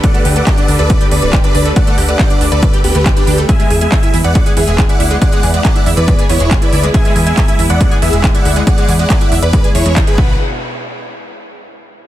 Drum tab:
HH |xxoxxxoxxxoxxxox|xxoxxxoxxxoxxxox|xxoxxxoxxxoxxxox|xxoxxxoxxxoxxxox|
CP |----x-------x---|----x-------x---|----x-------x---|----x-------x---|
BD |o---o---o---o---|o---o---o---o---|o---o---o---o---|o---o---o---o---|

HH |xxoxxxoxxxoxxxox|xxoxxxoxxxoxxx--|----------------|
CP |----x-------x---|----x-------x---|----------------|
BD |o---o---o---o---|o---o---o---o-o-|----------------|